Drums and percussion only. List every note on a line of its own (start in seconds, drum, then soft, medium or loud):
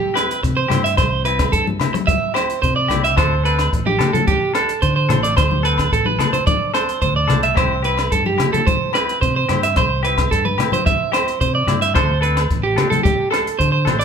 0.15 cross-stick medium
0.15 closed hi-hat medium
0.15 low agogo medium
0.31 closed hi-hat soft
0.44 kick medium
0.44 closed hi-hat medium
0.70 cross-stick medium
0.70 closed hi-hat medium
0.70 low conga medium
0.70 low agogo medium
0.86 closed hi-hat medium
0.97 kick medium
0.97 cross-stick medium
0.97 closed hi-hat soft
0.97 low agogo medium
1.25 closed hi-hat soft
1.39 kick medium
1.39 cross-stick medium
1.39 closed hi-hat soft
1.39 low agogo medium
1.53 kick medium
1.53 closed hi-hat soft
1.67 high conga medium
1.80 cross-stick medium
1.80 closed hi-hat soft
1.80 low conga medium
1.80 low agogo medium
1.95 closed hi-hat soft
1.95 high conga medium
2.08 kick medium
2.08 closed hi-hat soft
2.08 high conga medium
2.34 cross-stick medium
2.34 closed hi-hat medium
2.34 low agogo medium
2.50 closed hi-hat soft
2.63 kick medium
2.63 closed hi-hat soft
2.90 cross-stick medium
2.90 closed hi-hat soft
2.90 low conga medium
2.90 low agogo medium
3.05 closed hi-hat soft
3.17 kick medium
3.17 cross-stick medium
3.17 closed hi-hat soft
3.17 low agogo medium
3.45 closed hi-hat soft
3.59 cross-stick medium
3.59 closed hi-hat soft
3.59 low agogo medium
3.73 kick medium
3.73 closed hi-hat soft
3.87 high conga medium
3.99 cross-stick medium
3.99 closed hi-hat medium
3.99 low conga medium
3.99 low agogo medium
4.14 closed hi-hat medium
4.14 high conga medium
4.14 low conga medium
4.27 kick medium
4.27 closed hi-hat soft
4.27 high conga medium
4.55 cross-stick medium
4.55 closed hi-hat medium
4.55 low agogo medium
4.69 closed hi-hat soft
4.82 kick medium
4.82 closed hi-hat soft
5.09 cross-stick medium
5.09 closed hi-hat medium
5.09 low conga medium
5.09 low agogo medium
5.24 closed hi-hat medium
5.37 kick medium
5.37 cross-stick medium
5.37 closed hi-hat medium
5.37 low agogo medium
5.51 high conga medium
5.65 closed hi-hat soft
5.78 kick medium
5.78 cross-stick medium
5.78 closed hi-hat soft
5.78 low agogo medium
5.92 kick medium
5.92 closed hi-hat soft
6.05 high conga medium
6.19 cross-stick medium
6.19 closed hi-hat medium
6.19 low conga medium
6.19 low agogo medium
6.33 closed hi-hat soft
6.33 low conga medium
6.47 kick medium
6.47 closed hi-hat medium
6.47 high conga medium
6.74 cross-stick medium
6.74 closed hi-hat soft
6.74 low agogo medium
6.89 closed hi-hat soft
7.02 kick medium
7.02 closed hi-hat soft
7.29 cross-stick medium
7.29 closed hi-hat soft
7.29 low conga medium
7.29 low agogo medium
7.43 closed hi-hat soft
7.57 kick medium
7.57 cross-stick medium
7.57 closed hi-hat soft
7.57 low agogo medium
7.84 closed hi-hat soft
7.98 cross-stick medium
7.98 closed hi-hat soft
7.98 low agogo medium
8.12 kick medium
8.12 closed hi-hat medium
8.26 high conga medium
8.38 cross-stick medium
8.38 closed hi-hat medium
8.38 low conga medium
8.38 low agogo medium
8.54 closed hi-hat soft
8.54 high conga medium
8.54 low conga medium
8.67 kick medium
8.67 closed hi-hat soft
8.67 high conga medium
8.93 cross-stick medium
8.93 closed hi-hat soft
8.93 low agogo medium
9.09 closed hi-hat soft
9.22 kick medium
9.22 closed hi-hat soft
9.49 cross-stick medium
9.49 closed hi-hat medium
9.49 low conga medium
9.49 low agogo medium
9.63 closed hi-hat medium
9.76 kick medium
9.76 cross-stick medium
9.76 closed hi-hat soft
9.76 low agogo medium
10.05 closed hi-hat soft
10.18 kick medium
10.18 cross-stick medium
10.18 closed hi-hat soft
10.18 low agogo medium
10.32 kick medium
10.32 closed hi-hat medium
10.45 high conga medium
10.58 cross-stick medium
10.58 closed hi-hat medium
10.58 low conga medium
10.58 low agogo medium
10.72 closed hi-hat soft
10.72 high conga medium
10.72 low conga medium
10.86 kick medium
10.86 closed hi-hat medium
10.86 high conga medium
11.13 cross-stick medium
11.13 closed hi-hat medium
11.13 low agogo medium
11.28 closed hi-hat soft
11.41 kick medium
11.41 closed hi-hat soft
11.68 cross-stick medium
11.68 closed hi-hat soft
11.68 low conga medium
11.68 low agogo medium
11.82 closed hi-hat medium
11.96 kick medium
11.96 cross-stick medium
11.96 closed hi-hat soft
11.96 low agogo medium
12.23 closed hi-hat soft
12.37 cross-stick medium
12.37 closed hi-hat soft
12.37 low agogo medium
12.50 kick medium
12.50 closed hi-hat soft
12.78 cross-stick medium
12.78 closed hi-hat soft
12.78 low conga medium
12.78 low agogo medium
12.92 closed hi-hat soft
12.92 high conga medium
12.92 low conga medium
13.05 kick medium
13.05 closed hi-hat soft
13.05 high conga medium
13.32 cross-stick medium
13.32 closed hi-hat soft
13.32 low agogo medium
13.47 closed hi-hat soft
13.60 kick medium
13.60 closed hi-hat soft
13.87 cross-stick medium
13.87 closed hi-hat soft
13.87 low conga medium
13.87 low agogo medium
14.01 closed hi-hat medium